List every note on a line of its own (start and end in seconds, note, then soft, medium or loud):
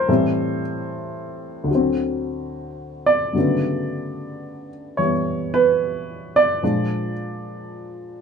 0.00 0.10 F3 soft
0.00 0.11 G#3 soft
0.00 0.10 A#4 loud
0.00 0.60 C5 medium
0.09 1.69 A2 medium
0.09 1.69 E3 soft
0.09 1.69 G3 soft
0.09 1.70 C4 medium
1.64 3.33 D2 soft
1.64 3.33 D3 soft
1.71 3.34 F#3 soft
1.75 3.38 C4 medium
3.06 4.69 D5 medium
3.33 6.61 G2 soft
3.33 6.62 D3 soft
3.33 6.63 F#3 soft
3.33 6.63 A3 soft
3.38 6.64 C#3 soft
3.38 4.99 B3 soft
4.97 6.61 E3 soft
4.97 6.62 G3 soft
4.97 6.62 B3 soft
4.97 5.10 C#5 medium
5.54 6.38 B4 medium
6.36 7.13 D5 medium
6.63 8.21 A#2 soft
6.63 8.21 F3 soft
6.63 8.21 G#3 soft
6.63 8.21 D4 medium